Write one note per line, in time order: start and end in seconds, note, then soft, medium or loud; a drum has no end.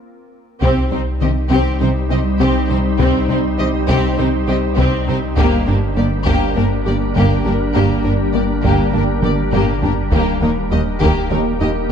0.61 0.70 C2 medium
0.61 5.39 C2 medium
0.61 0.80 C3 medium
0.61 0.70 C3 medium
0.61 5.34 G3 medium
0.61 0.90 C4 soft
0.61 0.90 C4 medium
0.61 5.34 D#4 medium
0.61 0.90 G4 soft
0.61 5.34 G4 medium
0.61 5.33 C5 medium
0.61 taiko medium
0.91 1.00 C2 soft
0.91 1.00 C3 soft
0.91 1.10 G3 medium
0.91 1.00 C4 soft
0.91 0.99 D#4 soft
0.91 0.99 C5 soft
1.21 1.30 C2 soft
1.21 1.30 C3 soft
1.21 1.39 D#3 medium
1.21 1.30 C4 soft
1.21 1.30 G4 soft
1.21 1.29 D#5 soft
1.50 1.59 C2 medium
1.50 1.59 C3 medium
1.50 1.69 C3 medium
1.50 1.78 C4 medium
1.50 1.79 C4 soft
1.50 1.78 G4 medium
1.50 taiko soft
1.80 1.89 C2 soft
1.80 1.90 C3 soft
1.80 1.99 D#3 medium
1.80 1.89 C4 soft
1.80 1.89 D#4 soft
1.80 1.88 C5 soft
2.10 2.19 C2 soft
2.10 2.19 C3 soft
2.10 2.28 C4 medium
2.10 2.19 C4 soft
2.10 2.19 G4 soft
2.10 2.18 D#5 soft
2.39 2.49 C2 medium
2.39 2.58 C3 medium
2.39 2.49 C3 medium
2.39 2.68 C4 medium
2.39 2.67 G4 medium
2.69 2.78 C2 soft
2.69 2.78 C3 medium
2.69 2.88 C4 medium
2.69 2.78 C4 soft
2.69 2.78 D#4 medium
2.69 2.77 C5 medium
2.99 3.08 C2 medium
2.99 3.17 C3 medium
2.99 3.08 C3 medium
2.99 3.27 C4 medium
2.99 3.28 C4 medium
2.99 3.28 G4 medium
2.99 taiko medium
3.29 3.38 C2 medium
3.29 3.38 C3 soft
3.29 3.47 G3 medium
3.29 3.38 C4 medium
3.29 3.38 D#4 soft
3.29 3.38 C5 medium
3.58 3.68 C2 soft
3.58 3.67 C3 soft
3.58 3.77 D#3 medium
3.58 3.66 C4 soft
3.58 3.67 G4 soft
3.58 3.67 D#5 medium
3.88 3.97 C2 medium
3.88 3.97 C3 medium
3.88 4.07 C3 medium
3.88 4.16 C4 medium
3.88 4.17 G4 medium
3.88 taiko medium
4.18 4.27 C2 medium
4.18 4.27 C3 medium
4.18 4.37 D#3 medium
4.18 4.27 C4 medium
4.18 4.26 D#4 soft
4.18 4.27 C5 medium
4.47 4.56 C2 medium
4.47 4.56 C3 medium
4.47 4.56 C4 medium
4.47 4.66 C4 medium
4.47 4.55 G4 medium
4.47 4.58 D#5 soft
4.77 4.86 C2 medium
4.77 4.96 C3 medium
4.77 4.86 C3 medium
4.77 5.05 C4 medium
4.77 5.06 C4 medium
4.77 5.06 G4 medium
4.77 taiko medium
5.08 5.16 C2 soft
5.08 5.16 C3 soft
5.08 5.26 C4 medium
5.08 5.17 C4 medium
5.08 5.16 D#4 medium
5.08 5.17 C5 medium
5.37 5.46 G1 medium
5.37 10.14 G1 medium
5.37 5.46 G2 medium
5.37 5.56 G3 medium
5.37 10.09 G3 medium
5.37 9.79 A#3 medium
5.37 5.65 A#3 medium
5.37 5.66 A#3 medium
5.37 9.79 D4 medium
5.37 10.13 D4 medium
5.37 10.09 G4 medium
5.37 5.66 G4 medium
5.37 10.11 A#4 medium
5.37 taiko medium
5.67 5.76 G1 soft
5.67 5.75 G2 soft
5.67 5.76 A#3 soft
5.67 5.85 D4 medium
5.67 5.76 D4 soft
5.67 5.75 A#4 soft
5.97 6.05 G1 soft
5.97 6.05 G2 soft
5.97 6.15 A#3 medium
5.97 6.06 A#3 soft
5.97 6.05 G4 soft
5.97 6.05 D5 soft
6.26 6.35 G1 medium
6.26 6.35 G2 medium
6.26 6.45 G3 medium
6.26 6.54 A#3 medium
6.26 6.54 G4 medium
6.26 taiko medium
6.56 6.65 G1 soft
6.56 6.65 G2 soft
6.56 6.64 A#3 soft
6.56 6.74 A#3 medium
6.56 6.64 D4 soft
6.56 6.65 A#4 soft
6.86 6.95 G1 soft
6.86 6.94 G2 soft
6.86 6.95 A#3 soft
6.86 6.94 G4 soft
6.86 7.04 G4 medium
6.86 6.95 D5 soft
7.16 7.24 G1 medium
7.16 7.24 G2 medium
7.16 7.34 G3 medium
7.16 7.44 A#3 medium
7.16 7.44 A#3 soft
7.16 7.44 G4 medium
7.16 taiko medium
7.45 7.54 G1 soft
7.45 7.54 G2 soft
7.45 7.54 A#3 soft
7.45 7.53 D4 soft
7.45 7.64 G4 medium
7.45 7.53 A#4 soft
7.75 7.84 G1 medium
7.75 7.84 G2 medium
7.75 7.93 G3 medium
7.75 8.03 A#3 soft
7.75 8.03 A#3 medium
7.75 8.03 G4 medium
7.75 taiko medium
8.04 8.13 G1 soft
8.04 8.13 G2 soft
8.04 8.13 A#3 soft
8.04 8.13 D4 soft
8.04 8.23 D4 medium
8.04 8.12 A#4 soft
8.34 8.43 G1 soft
8.34 8.43 G2 soft
8.34 8.42 A#3 soft
8.34 8.53 A#3 medium
8.34 8.43 G4 soft
8.34 8.42 D5 soft
8.64 8.72 G1 medium
8.64 8.72 G2 medium
8.64 8.82 G3 medium
8.64 8.92 A#3 soft
8.64 8.92 G4 soft
8.64 taiko medium
8.93 9.02 G1 soft
8.93 9.02 G2 soft
8.93 9.12 A#3 medium
8.93 9.02 A#3 soft
8.93 9.01 D4 soft
8.93 9.03 A#4 soft
9.23 9.32 G1 soft
9.23 9.32 G2 soft
9.23 9.32 A#3 soft
9.23 9.31 G4 soft
9.23 9.42 G4 soft
9.23 9.32 D5 soft
9.23 taiko mid medium
9.52 9.61 G1 soft
9.52 9.62 G2 medium
9.52 9.71 G3 medium
9.52 9.81 A#3 soft
9.52 9.81 G4 soft
9.52 taiko low-mid medium
9.82 9.91 G1 soft
9.82 9.91 G2 soft
9.82 9.91 A#3 soft
9.82 9.90 D4 soft
9.82 10.01 G4 medium
9.82 9.91 A#4 soft
9.82 taiko low medium
10.12 11.92 D#1 medium
10.12 10.20 D#2 medium
10.12 10.21 D#2 medium
10.12 10.31 D#3 medium
10.12 10.40 A#3 medium
10.12 10.33 A#3 soft
10.12 10.40 A#3 medium
10.12 11.92 A#3 medium
10.12 11.92 D#4 medium
10.12 10.33 G4 soft
10.12 11.92 G4 medium
10.12 10.41 G4 soft
10.12 11.92 A#4 medium
10.12 taiko medium
10.42 10.50 D#2 soft
10.42 10.50 A#3 soft
10.42 10.60 A#3 medium
10.42 10.50 D#4 soft
10.42 10.51 A#4 soft
10.72 10.80 D#2 soft
10.72 10.90 G3 medium
10.72 10.80 A#3 soft
10.72 10.80 G4 soft
10.72 10.80 D#5 soft
11.01 11.09 D#2 medium
11.01 11.10 D#2 medium
11.01 11.19 D#3 medium
11.01 11.29 A#3 medium
11.01 11.30 A#3 medium
11.01 11.29 G4 medium
11.01 taiko medium
11.30 11.39 D#2 soft
11.30 11.40 D#2 soft
11.30 11.49 G3 medium
11.30 11.52 A#3 medium
11.30 11.39 A#3 soft
11.30 11.39 D#4 soft
11.30 11.52 G4 medium
11.30 11.39 A#4 soft
11.61 11.69 D#2 soft
11.61 11.70 D#2 soft
11.61 11.69 A#3 soft
11.61 11.79 D#4 medium
11.61 11.70 G4 soft
11.61 11.69 D#5 soft